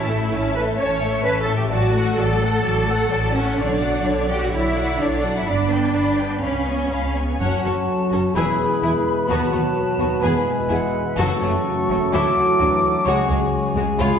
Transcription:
Already playing: double bass section A1, cello section E4
0.08 viola section A3, violin section A4 E5
0.32 double bass section A1, viola section C#4, violin section C#5 A5
0.55 viola section A3, violin section A4 E5, cello section B4
0.78 double bass section A1, viola section C#4, cello section C#5, violin section C#5 A5
1.01 viola section A3, violin section A4 E5
1.24 double bass section A1, viola section C#4, cello section B4, violin section C#5 A5
1.41 cello section A4
1.48 viola section A3, violin section A4 E5
1.56 cello section G4
1.71 double bass section A1, viola section F#3, cello section F#4, violin section D5 A5
1.95 viola section A3, violin section A4 F#5
2.17 double bass section A1, viola section F#3, cello section A4, violin section D5 A5
2.41 viola section A3, violin section A4 F#5
2.64 double bass section A1, viola section F#3, violin section D5 A5
2.88 viola section A3, violin section A4 F#5
3.11 double bass section A1, viola section F#3, violin section D5 A5
3.34 viola section A3, cello section C#4, violin section A4 F#5
3.58 double bass section B1, viola section D3, cello section D4, violin section C#5 D5
3.81 viola section F#3, violin section D5 F#5
4.05 double bass section B1, viola section D3, violin section C#5 D5
4.28 viola section F#3, cello section G4, violin section D5 F#5
4.41 cello section F#4
4.52 double bass section B1, viola section D3, cello section E4, violin section C#5 D5
4.75 viola section F#3, violin section D5 F#5
5.00 double bass section B1, viola section D3, cello section D4, violin section C#5 D5
5.23 viola section F#3, violin section D5 F#5
5.36 cello section E4
5.47 double bass section G1, viola section D4, cello section D4, violin section D5 B5
5.71 viola section B3, violin section B4 G5
5.95 double bass section G1, viola section D4, violin section D5 B5
6.18 viola section B3, violin section B4 G5
6.43 double bass section C#2, viola section C#4, cello section C#4, violin section F5 B5
6.67 viola section B3, violin section C#5 G#5
6.91 double bass section C#2, viola section C#4, violin section F5 B5
7.15 viola section B3, violin section C#5 G#5
7.39 double bass section F#1, trombone section F#2 F#3, harp F#2, cello section F#2, french horn section C#4 F#4, viola section C#4, clarinet F#4, violin section C#5 F#5, cor anglais C#5, flute A5, triangle
7.57 harp F#3
7.64 double bass section F#1, cello section F#2, viola section C#4, violin section F#4 A4
7.72 harp C#4
7.88 harp A4
8.04 harp F#4
8.11 double bass section F#1, cello section F#2, viola section C#4, violin section F#4 A4
8.20 harp C#4
8.34 double bass section E1, cello section E2, trombone section B2 G#3, harp E3, french horn section B3 E4, viola section E4, clarinet G#4, violin section G#4 B4, cor anglais B4, flute B5
8.51 harp E4
8.67 harp G#4
8.82 double bass section E1, cello section E2, viola section E4, violin section E4 G#4, harp B4
8.98 harp E5
9.13 harp G#4
9.28 cello section D#2, double bass section D#2, harp D#3, trombone section F#3, viola section B3, french horn section F#4, clarinet F#4, violin section F#4 B4, flute A5
9.45 harp B3
9.52 double bass section D#2, cello section D#2, violin section B3 F#4, viola section B3
9.61 harp F#4
9.76 harp B4
9.91 harp F#4
9.99 double bass section D#2, cello section D#2, viola section B3, violin section B3 F#4
10.08 harp B3
10.21 double bass section E1, cello section E2, harp E3, trombone section G#3, viola section B3, french horn section E4, clarinet E4, violin section G#4 B4, flute G#5
10.39 harp E4
10.54 harp B4
10.69 double bass section E1, cello section E2, viola section B3, violin section E4 G#4, harp E4, flute F#5
10.86 harp E5
11.03 harp B4
11.08 flute E5
11.16 double bass section F#1, cello section F#2, timpani F#2, harp F#2, trombone section C#3 F#3, viola section F#3, french horn section A3 F#4, clarinet F#4, violin section F#4 A4, cor anglais A4, flute C#6
11.35 harp A3
11.42 double bass section F#1, cello section F#2, viola section F#3, violin section A3 C#4
11.51 harp C#4
11.67 harp F#4
11.83 harp A4
11.90 double bass section F#1, cello section F#2, viola section F#3, violin section A3 C#4
11.99 harp C#4
12.12 cello section D2, double bass section D2, harp D3, trombone section E3, viola section F#3, violin section E4 A4, flute D6
12.30 harp A3
12.45 harp E4
12.59 double bass section D2, cello section D2, viola section F#3, violin section D4 F#4, harp F#4
12.77 harp A4
12.92 harp E4
13.04 cello section C#2, double bass section C#2, trombone section C#3, harp C#3, french horn section G#3 G#4, viola section G#3, violin section F#4 C#5, cor anglais G#4, flute C#6
13.23 harp C#4
13.29 double bass section C#2, cello section C#2, viola section G#3, violin section G#3 F#4
13.38 harp F#4
13.54 harp G#3
13.68 harp C#5
13.75 double bass section C#2, cello section C#2, viola section G#3, violin section G#3 F#4
13.84 harp F#4
13.98 cello section C#2, double bass section C#2, harp C#3, trombone section F3, viola section G#3, clarinet F4, violin section F4 C#5, flute B5
14.15 harp C#4

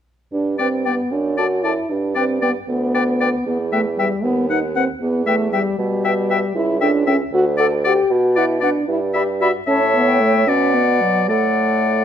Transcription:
0.32 bassoon G2, french horn D4
0.58 french horn C4, clarinet B4, oboe D5, flute G5
0.85 french horn B3, clarinet B4, oboe D5, flute G5
1.11 bassoon F#2, french horn D4
1.37 french horn F#4, clarinet A4, oboe D5, flute A5
1.64 french horn E4, clarinet A4, oboe D5, flute A5
1.90 bassoon G2, french horn D4
2.15 french horn C4, clarinet B4, oboe D5, flute G5
2.42 french horn B3, clarinet B4, oboe D5, flute G5
2.68 bassoon D2, french horn B3
2.94 clarinet B4, oboe D5, flute G5
3.20 clarinet B4, oboe D5, flute G5
3.46 bassoon E2, french horn B3
3.72 french horn A3, clarinet B4, oboe E5, flute G5
3.98 french horn G3, clarinet B4, oboe E5, flute G5
4.24 bassoon D#2, french horn B3
4.50 french horn D#4, clarinet B4, oboe F#5, flute F#5
4.76 french horn C4, clarinet B4, oboe F#5, flute F#5
5.01 bassoon E2, french horn B3
5.26 french horn A3, clarinet B4, oboe E5, flute G5
5.52 french horn G3, clarinet B4, oboe E5, flute G5
5.79 bassoon B2, french horn G3
6.03 clarinet B4, oboe E5, flute G5
6.30 clarinet B4, oboe E5, flute G5
6.55 bassoon C#2, french horn E4
6.81 french horn D4, clarinet A4, oboe E5, flute G5
7.07 french horn C#4, clarinet A4, oboe E5, flute G5
7.32 bassoon D2, french horn F#4
7.57 clarinet A4, french horn A4, oboe D5, flute F#5
7.84 french horn G4, clarinet A4, oboe D5, flute F#5
8.10 bassoon B2, french horn F#4
8.36 french horn E4, clarinet B4, oboe D5, flute F#5
8.60 french horn D4, clarinet B4, oboe D5, flute F#5
8.88 bassoon G2, french horn E4
9.14 french horn G4, clarinet D5, oboe E5, flute B5
9.41 french horn F#4, clarinet D5, oboe E5, flute B5
9.67 bassoon A2, french horn C#4, clarinet C#5, oboe E5, flute A5
9.94 french horn B3
10.08 flute G5
10.21 french horn A3
10.47 bassoon B2, french horn C#4, clarinet D5, oboe D5, flute F#5
10.74 french horn B3
11.01 french horn F#3
11.29 bassoon A2, french horn A3, clarinet A4, oboe D5, flute F#5

